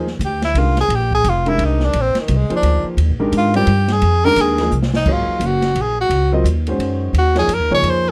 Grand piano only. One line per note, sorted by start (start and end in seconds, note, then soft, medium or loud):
0.56 0.75 D#3 soft
0.56 0.75 G#3 soft
0.56 0.75 D4 soft
0.56 0.76 G4 soft
0.56 0.76 A#4 medium
1.46 1.91 D#3 medium
1.46 1.91 G#3 medium
1.46 1.91 D4 medium
1.46 1.92 G4 medium
1.46 1.92 A#4 medium
2.50 2.95 D#3 medium
2.50 2.95 F3 medium
2.50 2.95 A#3 medium
2.50 2.95 G#4 medium
2.50 2.96 C5 medium
3.20 3.52 D#3 medium
3.20 3.52 G#3 medium
3.20 3.52 D4 medium
3.20 3.53 G4 medium
3.20 3.52 A#4 medium
3.55 3.66 G3 medium
3.55 3.66 C4 medium
3.55 3.67 F4 medium
3.55 3.67 A#4 medium
3.55 3.67 D5 medium
4.25 4.57 D#3 medium
4.25 4.57 G#3 medium
4.25 4.57 D4 medium
4.25 4.57 G4 medium
4.25 4.57 A#4 loud
4.59 4.71 F3 medium
4.59 4.71 A#3 medium
4.59 4.71 D#4 medium
4.59 4.71 G#4 medium
4.59 4.71 A#4 medium
5.07 6.03 F#3 medium
5.07 6.03 A#3 soft
5.07 6.03 D#4 medium
5.07 6.03 G#4 medium
5.07 6.03 C#5 medium
6.32 6.44 F#3 medium
6.32 6.44 C4 medium
6.32 6.44 F4 medium
6.32 6.44 A#4 medium
6.32 6.44 D#5 medium
6.68 7.12 D#3 medium
6.68 7.12 G#3 medium
6.68 7.13 C#4 medium
6.68 7.12 F#4 medium
6.68 7.13 C5 medium
7.36 7.48 F3 medium
7.36 7.48 A#3 medium
7.36 7.48 D#4 medium
7.36 7.48 G#4 medium
7.36 7.48 C#5 medium
7.71 8.11 F3 medium
7.71 8.11 A#3 medium
7.71 8.11 D#4 medium
7.71 8.11 G#4 medium
7.71 8.11 C#5 medium